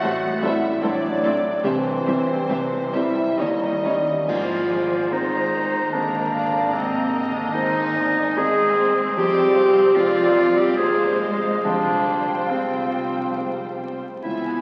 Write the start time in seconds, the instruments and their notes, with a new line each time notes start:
Already playing: felt piano A1 A2 G3 C4 E4, clarinet A3, french horn section F#4, violin section F#5
0.01 double bass section A1, felt piano A1 A2, cello section A2, viola section G3 A4, violin section C5 E5
0.42 viola section G3 A4, clarinet G3, felt piano G3 C4 E4, french horn section E4, violin section C5 E5
0.81 double bass section A1, felt piano A1 A2, cello section A2, clarinet F#3, viola section A3 A4, french horn section D4, violin section C5 D5 E5
1.23 viola section A3 A4, felt piano A3 C4 E4, violin section C5 E5
1.63 felt piano C2 C3, double bass section C2, cello section C3, clarinet E3, viola section G3 G4, french horn section C4, violin section C5 E5
2.05 viola section G3 G4, felt piano G3 C4 E4, violin section C5 E5
2.49 double bass section C2, felt piano C2 C3, cello section C3, viola section G3 G4, violin section C5 E5
2.92 viola section G3 G4, felt piano G3 C4 E4, clarinet G3, french horn section E4, violin section C5 E5
3.38 double bass section D#2, felt piano D#2 D#3, cello section D#3, viola section G3 D#4, clarinet G3, french horn section D#4, violin section C#5 D#5
3.84 felt piano G3 C#4 D#4, viola section G3 D#4, violin section C#5 D#5
4.27 double bass section G#1, felt piano G#2, cello section F3, viola section A#3, french horn section A#3 C4, clarinet F4, flute section C5, violin section D5 G#5, concert bass drum, crash
4.69 viola section G#3
5.10 cello section D#3, felt piano G#3 C4 A#4, clarinet D#4, violin section C5 A#5
5.92 cello section D3, felt piano G#3 C4 A#4, viola section A#3, clarinet D4, violin section A#4 A#5, flute section D#5
6.32 violin section D5, flute section F5
6.72 felt piano G#2, cello section C3, clarinet C4, flute section D#5, violin section D#5
7.33 cello section D3, clarinet D4
7.52 cello section D#3, felt piano G#3 C4 A#4, clarinet D#4, flute section C5, violin section G#5
7.95 flute section D5
8.37 cello section G#3, felt piano G#3 C4 A#4, viola section C4, clarinet G#4, violin section C5, flute section D#5
8.77 flute section C5
9.16 double bass section F1, felt piano F2, french horn section G3 C4, cello section G3, viola section C4, clarinet G4, violin section C5 G5, flute section D5
9.54 flute section C5, violin section F5
9.94 cello section F3, french horn section G#3 C4, felt piano G#3 C4 C5, clarinet F4, flute section D5, violin section D5 F5
10.57 cello section G3, clarinet G4
10.77 french horn section F3 C4, cello section G#3, felt piano G#3 C4 C5, viola section A#3, clarinet G#4, flute section C5, violin section C5 F5
11.20 viola section G#3, flute section D#5
11.63 felt piano F2, cello section D3, viola section G3, clarinet D4, violin section C5 G5, flute section F5
12.48 cello section C3, french horn section F3 C4, felt piano G#3 C4 C5, clarinet C4
13.37 felt piano G#3 C4 C5
14.22 double bass section C#2, felt piano C#2, cello section E3, french horn section G#3 B3, viola section B3, clarinet E4, violin section E5 G#5
14.45 violin section G#5